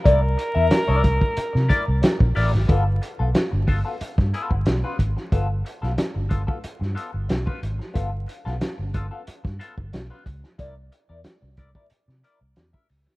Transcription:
<<
  \new Staff \with { instrumentName = "Trumpet" } { \time 4/4 \key c \major \tempo 4 = 91 bes'2.~ bes'8 r8 | r1 | r1 | r1 |
r1 | }
  \new Staff \with { instrumentName = "Clean electric guitar" } { \time 4/4 \key c \major <e' bes' d''>16 r8 <e' bes' e''>16 r16 <e' bes' d''>16 r4 <e' bes' d''>16 r8. <e' bes' d''>16 r16 | <b f' a'>16 r8 <b f' a'>16 r8 <b f' a'>16 <b f' a'>16 r8 <b f' a'>16 r8 <b f' b'>16 r8 | <b f' a'>16 r8 <b f' a'>16 r8 <b f' a'>16 <b f' a'>16 r8 <b f' a'>16 r8 <b f' b'>16 r8 | <b f' a'>16 r8 <b f' a'>16 r8 <b f' a'>16 <b f' a'>16 r8 <b f' a'>16 r8 <b f' b'>16 r8 |
<e' bes' d''>16 r8 <e' bes' d''>16 r8 <e' bes' d''>16 <e' bes' d''>16 r8 <e' bes' d''>16 r8 <e' bes' e''>16 r8 | }
  \new Staff \with { instrumentName = "Fingered electric bass" } { \clef bass \time 4/4 \key c \major c,8 r16 e,16 r16 c,8 r8 c16 r16 c,16 r16 bes,,16 a,,16 aes,,16 | g,,8 r16 b,,16 r16 g,,8 r8 g,16 r16 g,,16 b,,16 r16 aes,,16 r16 | g,,8 r16 b,,16 r16 g,,8 r8 g,16 r16 g,,16 b,,16 r16 aes,,16 r16 | g,,8 r16 b,,16 r16 g,,8 r8 g,16 r16 g,,16 b,,16 r16 cis,16 r16 |
c,8 r16 e,16 r16 c,8 r8 c16 r16 c,16 e,16 r16 cis,16 r16 | }
  \new DrumStaff \with { instrumentName = "Drums" } \drummode { \time 4/4 <hh bd>8 hh8 <hh sn>8 <hh bd>16 bd16 hh16 sn16 <hh bd>8 <hh sn>16 bd16 hho16 sn16 | <hh bd>8 hh8 <hh sn>8 <hho bd>8 hh16 <bd sn>16 hh16 bd16 <hh sn>8 <hh bd>16 sn16 | <hh bd>8 hh16 sn16 <hh sn>8 <hh bd>16 bd16 hh16 sn16 hh8 <hh sn>16 bd16 hh16 sn16 | <hh bd>8 hh16 sn16 <hh sn>8 <hh bd>8 hh16 <bd sn>16 hh16 bd16 <hh sn>8 <hh bd>16 sn16 |
<hh bd>8 hh8 <hh sn>8 <hh bd>16 bd16 hh16 sn16 hh8 <hh sn>16 bd16 hho16 sn16 | }
>>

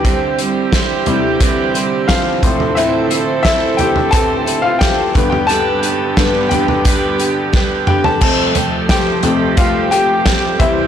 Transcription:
<<
  \new Staff \with { instrumentName = "Upright piano" } { \time 4/4 \key f \lydian \tempo 4 = 88 <g' g''>2~ <g' g''>8 r8 <f f''>4 | <e' e''>4 <e' e''>8 <g' g''>8 <a' a''>8. <f' f''>16 <g' g''>8. <g' g''>16 | <a' a''>4. <g' g''>2 <g' g''>16 <a' a''>16 | <a' a''>4 <g' g''>4 <f' f''>8 <g' g''>4 <e' e''>8 | }
  \new Staff \with { instrumentName = "Upright piano" } { \clef bass \time 4/4 \key f \lydian r4. <c g e'>4. r8 <a, c c'>8~ | <a, c c'>2.~ <a, c c'>8 <g, d b>8~ | <g, d b>4 <g, d b>8 r2 r8 | <f, c a>4. <f, c a>8 r4. <c e g>8 | }
  \new Staff \with { instrumentName = "Steel-string acoustic guitar" } { \time 4/4 \key f \lydian <c e g c' e' c''>8 <g c' e' c''>8 <g c' e' c''>8 <g c' e' c''>8 <c e g c' e' c''>8 <g c' e' c''>8 <g c' e' c''>8 <a c' e' c''>8 | <a, e a c' e' c''>8 <a c' e' c''>8 <a c' e' c''>8 <a c' e' c''>8 <a, e a c' e' c''>8 <a c' e' c''>8 <a c' e' c''>8 <d' g' b'>8 | <g d' g' b'>8 <d' g' b'>8 <g d' g' b'>8 <d' g' b'>8 <g d' g' b'>8 <d' g' b'>8 <g d' g' b'>8 <d' g' b'>8 | <f g c' g' a'>8 <c' g' a'>8 <g c' g' a'>8 <c' g' a'>8 <f g c' g' a'>8 <c' g' a'>8 <g c' g' a'>8 <g c' e' c''>8 | }
  \new Staff \with { instrumentName = "String section" } { \time 4/4 \key f \lydian << { g'2.~ g'8 a'8~ | a'2.~ a'8 g'8~ | g'1 | g'1 | } \\ { <d c'>1~ | <d c'>2.~ <d c'>8 <d b>8~ | <d b>1 | <f a>2.~ <f a>8 <g c'>8 | } >> }
  \new DrumStaff \with { instrumentName = "Drums" } \drummode { \time 4/4 <hh bd>8 hh8 <hh bd sn>8 <hh tomfh>8 <hh bd>8 hh8 <hh bd sn>8 <hh bd tomfh>16 tomfh16 | hh8 hh8 <hh bd sn>8 <hh tomfh>16 tomfh16 <hh bd>8 hh8 <hh bd sn>8 <hh bd tomfh>16 tomfh16 | hh8 hh8 <hh bd sn>8 <hh tomfh>16 tomfh16 <hh bd>8 hh8 <bd sn>8 toml16 tomfh16 | <cymc bd>8 <hh tomfh>8 <hh bd sn>8 <hh tomfh>8 <hh bd>8 hh8 <hh bd sn>8 <hh bd tomfh>8 | }
>>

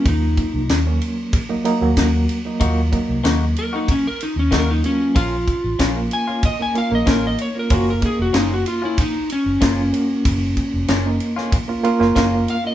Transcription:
<<
  \new Staff \with { instrumentName = "Electric slide guitar" } { \time 4/4 \key ees \dorian \tempo 4 = 94 ees'4 r2. | r4. bes'16 ees'16 des'16 bes'16 ees'16 des'16 bes'16 ees'16 des'8 | f'4 r8 aes''8 ees''16 aes''16 f''16 ees''16 bes'16 ees''16 des''16 bes'16 | ges'16 bes'16 aes'16 ges'16 ees'16 ges'16 f'16 e'16 ees'8 des'4.~ |
des'4. r2 f''16 ees''16 | }
  \new Staff \with { instrumentName = "Clean electric guitar" } { \time 4/4 \key ees \dorian r1 | <ees bes ees' ges'>16 r8. <ees bes ees' ges'>16 r8 <bes ees' ges'>16 r4 <ees bes ees' ges'>16 r8. | <f bes des' f'>16 r8. <f bes des' f'>16 r8 <bes des' f'>16 r4 <f bes des' f'>16 r8. | <f bes des' f'>16 r8. <f bes des' f'>16 r8 <bes des' f'>16 r4 <f bes des' f'>16 r8. |
r4 <f bes des' f'>16 r8 <bes des' f'>16 r4 <f bes des' f'>16 r8. | }
  \new Staff \with { instrumentName = "Reed electric piano" } { \time 4/4 \key ees \dorian <ges bes f'>4 r16 <ges bes des'>4 <ges bes ees'>16 <ges bes ees'>16 <ges bes ges'>4 <ges bes ees'>16 | <ges bes f'>8 <ges bes ees'>4.~ <ges bes ees'>16 r8. <ges bes ees'>8 <ges bes f'>8 | r4 r16 <bes des' f'>4 <bes des' ees'>16 <bes des' f'>16 <bes des' ees'>4 <bes des' f'>16 | <bes des' f'>8 <bes des' ees'>4.~ <bes des' ees'>16 r8. <bes des' f'>8 <bes des' ges'>8~ |
<bes des' ges'>4 r16 <bes des' ees'>4 <bes des' f'>16 <bes des' f'>16 <bes des' f'>4 <bes des' f'>16 | }
  \new Staff \with { instrumentName = "Fingered electric bass" } { \clef bass \time 4/4 \key ees \dorian ees,8 r16 c,16 ees,8 r4 r16 ees,16 ees,8 r8 | ees,8 r16 c,16 ees,8 r4 r16 ees,16 ees,8 r8 | bes,,8 r16 a,,16 bes,,8 r4 r16 bes,,16 a,,8 r8 | ges,,8 r16 f,,16 ges,,8 r4 r16 ges,,16 ges,,8 r8 |
ges,,8 r16 f,,16 ges,,8 r4 r16 ges,,16 ges,,8 r8 | }
  \new DrumStaff \with { instrumentName = "Drums" } \drummode { \time 4/4 <bd cymr>8 <bd cymr>8 <cymr sn>8 cymr8 <bd cymr>8 cymr8 <bd cymr sn>8 cymr8 | <bd cymr>8 <bd cymr>8 <cymr sn>8 cymr8 <bd cymr>8 cymr8 <bd cymr sn>8 cymr8 | <bd cymr>8 <bd cymr>8 <bd cymr sn>8 cymr8 <bd cymr>8 cymr8 <bd cymr sn>8 cymr8 | <bd cymr>8 <bd cymr>8 <cymr sn>8 cymr8 <bd cymr>8 cymr8 <bd cymr sn>8 cymr8 |
<bd cymr>8 <bd cymr>8 <cymr sn>8 cymr16 sn16 <bd cymr>8 cymr16 sn16 <bd cymr sn>8 cymr8 | }
>>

